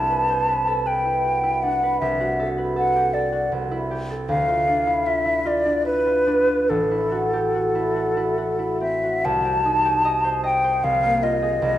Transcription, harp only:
0.00 2.00 C2 soft
0.00 1.62 D4 soft
0.00 1.04 E4 soft
0.10 0.47 B4 soft
0.30 0.62 C5 soft
0.48 0.85 B4 soft
0.67 1.00 A4 soft
0.86 1.82 B4 soft
1.05 1.42 E4 soft
1.24 1.58 F#4 soft
1.43 3.70 E4 soft
1.63 4.66 D4 soft
1.83 2.05 B4 soft
2.01 3.51 C2 soft
2.20 3.31 F#4 soft
2.40 2.75 A4 soft
2.58 2.90 B4 soft
2.76 3.13 A4 soft
2.95 3.28 G4 soft
3.14 3.56 A4 soft
3.32 3.55 F#4 soft
3.52 4.32 C2 soft
3.71 4.32 E4 soft
3.91 4.32 G4 soft
4.10 4.43 A4 soft
4.28 6.72 D2 soft
4.48 5.05 F4 soft
4.68 5.65 D4 soft
4.87 5.20 E4 soft
5.07 5.44 F4 soft
5.25 5.59 E4 soft
5.45 6.05 F4 soft
5.66 6.26 D4 soft
5.86 6.21 E4 soft
6.06 6.46 F4 soft
6.27 6.73 D4 soft
6.47 6.72 F4 soft
6.70 9.28 A1 soft
6.91 7.74 E4 soft
7.12 7.53 F#4 soft
7.33 7.69 G4 soft
7.55 7.94 F#4 soft
7.75 8.10 E4 soft
7.96 8.37 F#4 soft
8.17 8.58 E4 soft
8.38 8.74 F#4 soft
8.59 9.28 E4 soft
8.81 9.44 C4 soft
9.03 9.28 F#4 soft
9.25 10.82 C2 soft
9.45 11.78 C4 soft
9.65 10.87 D#4 soft
9.85 10.86 G4 soft
10.05 10.42 D#5 soft
10.24 10.63 C5 soft
10.44 10.86 D#5 soft
10.64 11.78 C5 soft
10.84 11.61 C2 soft
11.03 11.65 A#3 soft
11.23 11.78 F4 soft
11.42 11.78 G#4 soft
11.62 11.78 C2 medium

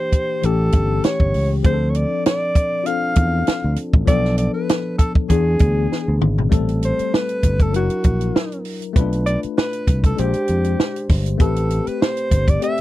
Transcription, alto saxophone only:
0.00 0.47 C5 medium
0.45 1.06 A4 medium
1.05 1.51 C#5 loud
1.66 1.92 C5 medium
1.90 1.97 C#5 medium
1.96 2.25 D5 medium
2.26 2.88 D5 loud
2.86 3.78 F5 loud
4.08 4.36 D5 loud
4.38 4.53 D5 medium
4.54 4.96 B4 medium
4.98 5.12 A4 medium
5.29 6.17 G#4 medium
6.85 7.16 C5 medium
7.14 7.64 B4 medium
7.63 7.75 A4 medium
7.76 8.62 F#4 medium
9.26 9.40 D5 medium
9.58 10.01 B4 medium
10.06 10.21 A4 medium
10.19 11.10 G4 medium
11.41 11.89 A4 medium
11.88 12.03 B4 medium
12.02 12.51 C5 medium
12.49 12.63 D5 medium
12.64 12.81 E5 loud

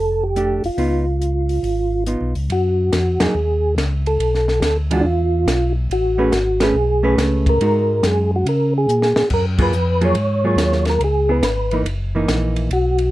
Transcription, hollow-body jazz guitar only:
0.36 0.62 A3 medium
0.36 0.62 D4 medium
0.36 0.62 G4 medium
0.78 1.04 B3 medium
0.78 1.04 D#4 medium
0.78 1.05 F4 medium
2.07 2.32 B3 soft
2.07 2.33 D#4 soft
2.07 2.33 F4 medium
3.20 3.34 F#3 medium
3.20 3.34 A#3 medium
3.20 3.34 D#4 medium
3.20 3.34 G#4 medium
4.91 5.04 E3 medium
4.91 5.04 G#3 medium
4.91 5.04 D4 medium
4.91 5.05 F4 medium
6.18 6.31 A3 medium
6.18 6.31 C#4 medium
6.18 6.32 G#4 medium
6.18 6.32 B4 medium
6.61 6.74 A3 medium
6.61 6.74 C#4 medium
6.61 6.75 G#4 medium
6.61 6.75 B4 medium
7.03 7.57 A3 medium
7.03 7.58 C#4 medium
7.03 7.58 G#4 medium
7.03 7.58 B4 medium
7.62 8.46 G#3 medium
7.62 8.46 D#4 medium
7.62 8.46 F#4 medium
9.58 9.71 F#3 medium
9.58 9.72 A#3 medium
9.58 9.72 F4 medium
9.58 9.72 G#4 medium
10.01 10.14 F#3 medium
10.01 10.14 A#3 medium
10.01 10.14 F4 medium
10.01 10.15 G#4 medium
10.44 10.98 F#3 medium
10.44 10.98 A#3 medium
10.44 10.98 F4 medium
10.44 10.98 G#4 medium
11.29 11.42 B3 medium
11.29 11.42 E4 medium
11.29 11.42 G#4 medium
11.72 11.85 E3 medium
11.72 11.85 A#3 medium
11.72 11.85 D#4 medium
12.15 12.68 E3 medium
12.15 12.69 A#3 medium
12.15 12.69 D#4 medium

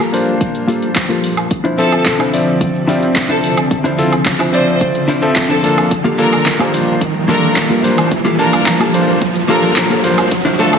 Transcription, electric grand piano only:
0.12 1.49 A#3 medium
0.12 1.49 D4 medium
0.12 1.50 F4 medium
0.12 1.50 C5 medium
1.78 2.30 F3 medium
1.78 2.30 C4 medium
1.78 2.31 A4 loud
1.78 2.30 E5 medium
2.33 2.86 F3 medium
2.33 2.85 C4 medium
2.33 2.86 D5 medium
2.33 2.85 E5 medium
2.87 3.96 F3 medium
2.87 3.95 C4 medium
2.87 3.96 D5 medium
2.87 3.95 E5 medium
3.98 4.12 C4 medium
3.98 4.12 E4 medium
3.98 4.12 F4 medium
3.98 4.12 A4 medium
4.52 5.20 F3 medium
4.52 5.19 C4 medium
4.52 5.20 D5 medium
4.52 5.20 E5 medium
5.22 5.61 F3 medium
5.22 5.60 C4 medium
5.22 5.61 A4 loud
5.22 5.60 E5 medium
5.63 5.91 A#3 medium
5.63 5.91 D4 medium
5.63 5.91 F4 medium
5.63 5.91 A4 medium
6.18 6.70 A#3 medium
6.18 6.71 D4 medium
6.18 6.71 F4 medium
6.18 6.71 A4 medium
6.73 6.99 A#3 medium
6.73 6.99 D4 medium
6.73 6.99 F4 medium
6.73 6.99 C5 medium
7.28 7.80 A#3 medium
7.28 7.81 D4 medium
7.28 7.81 F4 medium
7.28 7.81 A4 medium
7.83 8.09 A#3 medium
7.83 8.09 D4 medium
7.83 8.09 F4 medium
7.83 8.09 C5 medium
8.39 8.91 A#3 medium
8.39 8.91 D4 medium
8.39 8.91 F4 medium
8.39 8.91 A5 loud
8.93 9.19 A#3 medium
8.93 9.19 D4 medium
8.93 9.20 F4 medium
8.93 9.20 C5 medium
9.49 10.01 A#3 medium
9.49 10.01 D4 medium
9.49 10.01 F4 medium
9.49 10.01 A4 loud
10.04 10.29 A#3 medium
10.04 10.30 D4 medium
10.04 10.30 F4 medium
10.04 10.30 C5 medium
10.59 10.79 A3 medium
10.59 10.79 D4 medium
10.59 10.79 F4 medium
10.59 10.79 A4 loud

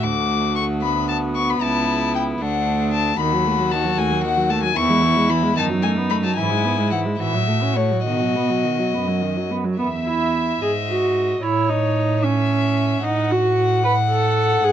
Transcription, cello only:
0.04 1.61 D2 soft
1.62 2.39 C#2 soft
2.41 3.18 D2 soft
3.20 3.85 D#2 medium
3.97 4.63 D#2 soft
4.76 5.43 E2 medium
5.56 6.23 F#2 soft
6.37 7.06 G#2 medium
7.19 7.91 A2 soft
8.06 8.79 B2 soft
8.94 9.66 F#2 soft
9.80 10.58 E2 soft
10.62 11.41 G#2 soft
11.42 13.01 A2 soft
13.04 14.60 A2 soft
14.64 14.72 G#2 soft

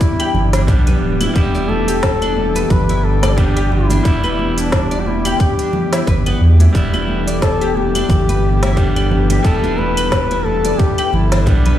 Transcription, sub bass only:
0.34 0.67 G1 loud
0.68 0.95 B1 loud
1.01 1.28 D1 medium
1.35 2.65 E1 loud
2.70 3.99 G1 medium
4.05 5.34 E1 loud
6.07 6.34 G1 loud
6.41 6.67 E2 medium
6.75 8.04 E1 loud
8.09 9.39 G1 loud
9.44 10.74 E1 loud
11.13 11.46 G1 loud
11.47 11.73 B1 medium

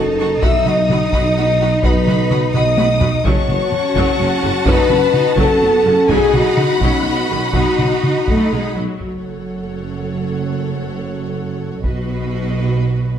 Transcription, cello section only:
0.00 3.25 D#4 medium
3.25 3.49 C#4 medium
3.48 3.72 B3 medium
3.72 4.67 C#4 medium
4.66 4.90 D#4 loud
4.89 5.14 C#4 medium
5.13 5.37 D#4 medium
5.37 5.61 C#4 medium
5.61 5.85 B3 medium
5.84 6.09 C#4 medium
6.08 6.81 D#4 medium
6.81 7.05 C#4 medium
7.06 7.30 B3 medium
7.30 7.54 C#4 medium
7.54 8.62 D#4 medium
9.01 11.81 F#2 soft
11.85 13.19 B2 medium

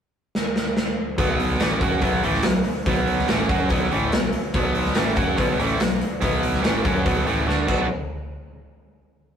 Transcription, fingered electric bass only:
1.18 1.58 B1 medium
1.61 1.80 A1 medium
1.82 2.01 F#2 medium
2.03 2.22 B1 medium
2.24 2.44 A1 medium
2.45 2.64 B1 medium
2.86 3.26 B1 medium
3.29 3.49 A1 medium
3.50 3.70 F#2 medium
3.70 3.90 B1 medium
3.92 4.11 A1 medium
4.14 4.33 B1 medium
4.55 4.94 B1 medium
4.96 5.16 A1 medium
5.17 5.37 F#2 loud
5.39 5.58 B1 medium
5.59 5.79 A1 medium
5.80 6.00 B1 medium
6.23 6.62 B1 medium
6.65 6.84 A1 medium
6.85 7.05 F#2 medium
7.06 7.26 B1 medium
7.27 7.46 A1 medium
7.48 7.68 D2 medium
7.69 7.88 B1 medium

